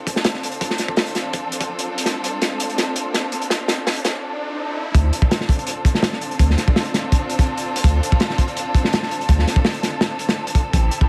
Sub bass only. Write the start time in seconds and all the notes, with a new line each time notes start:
0.61 D2
2.06 D2
3.50 D2
4.95 D2
6.39 D2
7.84 D2
9.29 D2
10.73 A1